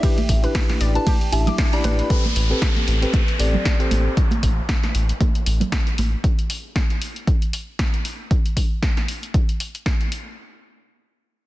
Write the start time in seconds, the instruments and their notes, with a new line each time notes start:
Already playing: ambient pad A4 D5 G5
0.03 tine electric piano D4 E4 G4 B4, synth pluck G4, kick, closed hi-hat, ride
0.18 closed hi-hat, high conga
0.29 analog synth bass A1, kick, open hi-hat
0.43 tine electric piano D4 E4 G4 B4, synth pluck B4, closed hi-hat
0.55 kick, snare, closed hi-hat, ride
0.69 snare, closed hi-hat, high conga
0.81 analog synth bass A1, synth pluck D5, open hi-hat
0.95 tine electric piano D4 E4 G4 B4, synth bell A5, closed hi-hat
1.07 synth pluck G4, kick, closed hi-hat, ride, high conga
1.21 closed hi-hat
1.32 analog synth bass A1, tine electric piano D4 E4 G4 E5, synth bell A5, open hi-hat
1.47 synth pluck D6, closed hi-hat, high conga, low conga
1.58 kick, snare, closed hi-hat, ride
1.72 tine electric piano D4 E4 G4 D5, synth bell B5, closed hi-hat
1.84 analog synth bass A1, synth pluck B4, open hi-hat, high conga
1.99 closed hi-hat
2.10 tine electric piano C4 G4 A4 B4, kick, closed hi-hat, downlifter
2.25 closed hi-hat, high conga
2.36 analog synth bass A1, open hi-hat
2.50 tine electric piano C4 G4 A4 B4
2.62 kick, snare, closed hi-hat
2.76 closed hi-hat, high conga
2.88 analog synth bass A1, open hi-hat
3.02 tine electric piano C4 G4 A4 B4, closed hi-hat
3.13 kick, closed hi-hat, high conga
3.28 closed hi-hat
3.39 analog synth bass A1, tine electric piano C4 G4 A4 D5, open hi-hat
3.53 high conga, low conga
3.65 kick, snare, closed hi-hat
3.79 tine electric piano C4 G4 A4 C5, closed hi-hat
3.91 analog synth bass A1, open hi-hat, high conga
4.17 kick, closed hi-hat
4.31 closed hi-hat, high conga
4.43 analog synth bass A1, kick, open hi-hat
4.69 kick, snare, closed hi-hat
4.84 snare, closed hi-hat, high conga
4.95 analog synth bass A1, open hi-hat
5.09 closed hi-hat
5.21 kick, closed hi-hat, high conga
5.35 closed hi-hat
5.46 analog synth bass A1, open hi-hat
5.60 closed hi-hat, high conga, low conga
5.72 kick, snare, closed hi-hat
5.87 closed hi-hat
5.98 analog synth bass A1, open hi-hat, high conga
6.24 kick, closed hi-hat
6.39 closed hi-hat
6.50 open hi-hat
6.76 kick, snare, closed hi-hat
6.90 closed hi-hat
7.02 open hi-hat
7.16 closed hi-hat
7.27 kick, closed hi-hat
7.42 closed hi-hat
7.53 open hi-hat
7.79 kick, snare, closed hi-hat
7.94 closed hi-hat
8.05 open hi-hat
8.31 kick, closed hi-hat
8.46 closed hi-hat
8.57 kick, open hi-hat
8.83 kick, snare, closed hi-hat
8.97 snare, closed hi-hat
9.08 open hi-hat
9.23 closed hi-hat
9.34 kick, closed hi-hat
9.49 closed hi-hat
9.60 open hi-hat
9.75 closed hi-hat
9.86 kick, snare, closed hi-hat
10.01 closed hi-hat
10.12 open hi-hat